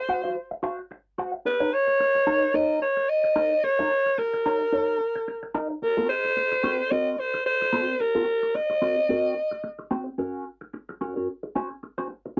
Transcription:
0.00 0.63 C5 medium
0.09 0.23 F#4 medium
0.09 0.23 C5 medium
0.09 0.23 F#5 medium
0.24 0.35 F#4 medium
0.24 0.35 C5 medium
0.24 0.35 F5 medium
0.51 muted clean electric guitar stroke soft
0.63 0.80 F#4 medium
0.63 0.78 C5 medium
0.63 0.78 F5 medium
0.79 muted clean electric guitar stroke medium
0.91 muted clean electric guitar stroke soft
1.18 1.32 F#4 medium
1.18 1.32 C5 medium
1.18 1.32 F#5 medium
1.34 muted clean electric guitar stroke medium
1.45 1.75 B4 loud
1.45 muted clean electric guitar stroke soft
1.60 1.71 D#4 medium
1.60 1.71 A#4 medium
1.60 1.72 C#5 medium
1.72 2.56 C#5 loud
1.72 muted clean electric guitar stroke soft
1.87 muted clean electric guitar stroke soft
2.00 muted clean electric guitar stroke soft
2.15 muted clean electric guitar stroke soft
2.27 2.44 D#4 loud
2.27 2.42 A#4 medium
2.27 2.41 C#5 medium
2.42 muted clean electric guitar stroke medium
2.54 2.79 D#4 medium
2.54 2.80 A#4 medium
2.54 2.80 C#5 medium
2.54 2.81 D#5 loud
2.82 3.11 C#5 loud
2.82 muted clean electric guitar stroke soft
2.97 muted clean electric guitar stroke soft
3.09 3.66 D#5 loud
3.24 muted clean electric guitar stroke soft
3.36 3.53 D#4 medium
3.36 3.51 A#4 medium
3.36 3.50 C#5 medium
3.51 muted clean electric guitar stroke soft
3.64 4.20 C#5 loud
3.64 muted clean electric guitar stroke soft
3.79 3.90 D#4 medium
3.79 3.90 A#4 medium
3.79 3.90 C#5 medium
3.91 muted clean electric guitar stroke soft
4.06 muted clean electric guitar stroke soft
4.18 5.55 A#4 medium
4.18 muted clean electric guitar stroke medium
4.33 muted clean electric guitar stroke soft
4.46 4.63 D#4 medium
4.46 4.61 A#4 medium
4.46 4.60 C#5 medium
4.61 muted clean electric guitar stroke soft
4.72 4.98 D#4 medium
4.72 4.98 A#4 medium
4.72 4.98 C#5 medium
5.00 muted clean electric guitar stroke soft
5.16 muted clean electric guitar stroke medium
5.28 muted clean electric guitar stroke soft
5.43 muted clean electric guitar stroke soft
5.54 5.72 D#4 medium
5.54 5.70 A#4 medium
5.54 5.70 D#5 medium
5.70 muted clean electric guitar stroke soft
5.82 6.07 A#4 medium
5.82 muted clean electric guitar stroke soft
5.97 6.08 C4 medium
5.97 6.09 F#4 medium
5.97 6.09 A#4 medium
6.09 6.93 C5 loud
6.25 muted clean electric guitar stroke soft
6.37 muted clean electric guitar stroke soft
6.52 muted clean electric guitar stroke medium
6.63 6.81 C4 medium
6.63 6.79 F#4 medium
6.63 6.78 A#4 medium
6.79 muted clean electric guitar stroke medium
6.91 7.16 C4 medium
6.91 7.17 F#4 medium
6.91 7.17 A#4 medium
6.91 7.12 D#5 loud
7.12 7.21 D#5 medium
7.18 7.45 C5 loud
7.18 muted clean electric guitar stroke soft
7.34 muted clean electric guitar stroke medium
7.46 8.02 C5 loud
7.62 muted clean electric guitar stroke soft
7.73 7.93 C4 medium
7.73 7.88 F#4 loud
7.73 7.87 A#4 loud
7.88 muted clean electric guitar stroke medium
8.00 8.57 A#4 loud
8.00 muted clean electric guitar stroke medium
8.15 8.26 C4 medium
8.15 8.27 F#4 medium
8.15 8.27 A#4 medium
8.27 muted clean electric guitar stroke soft
8.43 muted clean electric guitar stroke soft
8.55 9.91 D#5 loud
8.55 muted clean electric guitar stroke soft
8.70 muted clean electric guitar stroke medium
8.82 8.99 C4 medium
8.82 8.97 F#4 medium
8.82 8.96 A#4 medium
8.97 muted clean electric guitar stroke medium
9.09 9.34 C4 medium
9.09 9.35 F#4 medium
9.09 9.35 A#4 medium
9.36 muted clean electric guitar stroke soft
9.51 muted clean electric guitar stroke medium
9.64 muted clean electric guitar stroke soft
9.79 muted clean electric guitar stroke soft
9.91 10.08 C4 medium
9.91 10.05 F#4 medium
9.91 10.06 C5 medium
10.06 muted clean electric guitar stroke soft
10.18 10.44 C#4 medium
10.18 10.44 F#4 medium
10.18 10.44 A#4 medium
10.61 muted clean electric guitar stroke soft
10.73 muted clean electric guitar stroke soft
10.89 muted clean electric guitar stroke medium
11.01 11.15 C#4 medium
11.01 11.15 F#4 medium
11.01 11.15 A#4 medium
11.16 11.27 C#4 medium
11.16 11.27 F#4 medium
11.16 11.27 A#4 medium
11.43 muted clean electric guitar stroke soft
11.55 11.72 C#4 medium
11.55 11.70 F#4 medium
11.55 11.70 C5 loud
11.70 muted clean electric guitar stroke medium
11.83 muted clean electric guitar stroke soft
11.98 12.09 C#4 medium
11.98 12.09 F#4 medium
11.98 12.10 C5 medium
12.10 muted clean electric guitar stroke soft
12.26 muted clean electric guitar stroke soft

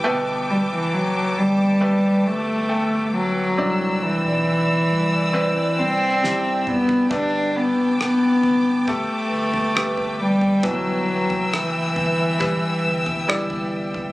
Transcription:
0.00 1.72 A3 medium
0.00 3.53 B4 medium
0.00 3.53 G5 medium
0.00 3.53 D6 medium
0.04 0.67 G1 loud
0.04 1.33 B2 medium
0.04 1.73 B4 medium
0.04 1.72 G5 medium
0.04 3.55 A5 medium
0.51 0.60 G3 medium
0.72 1.34 F#1 medium
0.72 0.95 E3 medium
0.93 1.39 F#3 medium
1.38 2.00 G1 medium
1.38 2.29 G3 medium
1.80 2.65 A3 medium
1.80 2.65 G4 medium
1.80 2.65 B4 medium
2.27 3.55 G1 medium
2.27 3.14 A3 medium
2.68 3.53 A3 medium
2.68 3.54 A4 medium
2.68 3.53 G5 medium
3.15 4.04 F#3 medium
3.56 4.21 C2 loud
3.56 4.86 D3 soft
3.56 5.25 C4 medium
3.56 5.26 E4 soft
3.56 7.07 D5 medium
3.56 5.26 D5 medium
3.56 14.12 G5 medium
3.56 7.07 E6 medium
4.03 5.80 E3 medium
4.25 4.87 B1 medium
4.92 5.53 C2 medium
5.33 6.18 C4 medium
5.33 6.18 E4 medium
5.33 6.18 B4 medium
5.79 7.07 C2 medium
5.79 6.69 C4 medium
6.22 7.06 C3 medium
6.22 7.07 E4 soft
6.22 7.07 G4 medium
6.22 snare soft
6.67 7.11 B3 medium
6.67 mid tom medium
6.89 floor tom medium
7.10 7.73 G1 loud
7.10 8.39 G3 soft
7.10 8.78 A3 medium
7.10 7.57 D4 medium
7.10 8.79 G4 medium
7.10 8.79 B4 medium
7.10 14.12 B4 medium
7.10 10.61 A5 medium
7.10 10.61 D6 medium
7.10 kick medium
7.10 floor tom medium
7.56 8.00 B3 medium
7.77 8.39 F#1 medium
8.00 8.89 B3 medium
8.00 cross-stick medium
8.43 9.06 G1 medium
8.43 floor tom medium
8.87 9.71 A3 medium
8.87 10.20 A3 medium
8.87 9.71 G4 medium
8.87 9.72 A4 medium
8.87 kick medium
8.87 floor tom medium
9.32 10.60 G1 medium
9.54 floor tom medium
9.75 10.59 A3 soft
9.75 10.59 G4 medium
9.75 10.60 B4 medium
9.75 cross-stick medium
9.97 floor tom soft
10.21 10.66 G3 medium
10.41 floor tom soft
10.63 11.26 G1 loud
10.63 11.92 B2 soft
10.63 12.31 E3 medium
10.63 11.55 F#3 medium
10.63 12.31 E4 medium
10.63 12.32 B4 medium
10.63 14.12 E5 medium
10.63 14.12 E6 medium
10.63 kick medium
10.63 floor tom medium
11.30 11.93 F#1 medium
11.30 floor tom medium
11.53 13.73 E3 medium
11.53 cross-stick medium
11.96 12.59 G1 medium
11.96 floor tom medium
12.39 13.24 G3 medium
12.39 13.24 E4 medium
12.39 13.24 B4 medium
12.39 kick medium
12.39 floor tom medium
12.85 14.12 G1 medium
13.06 floor tom medium
13.28 14.12 G3 medium
13.28 14.12 E4 medium
13.28 14.12 D5 medium
13.28 cross-stick loud
13.50 floor tom soft
13.94 floor tom soft

